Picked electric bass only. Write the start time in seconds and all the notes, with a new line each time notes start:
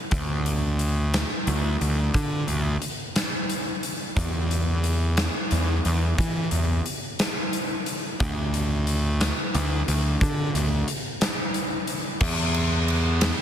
0.12 D2
1.47 D2
1.81 D2
2.15 D3
2.48 D2
4.17 E2
5.52 E2
5.85 E2
6.19 E3
6.52 E2
8.20 D2
9.55 D2
9.88 D2
10.22 D3
10.54 D2
12.21 E2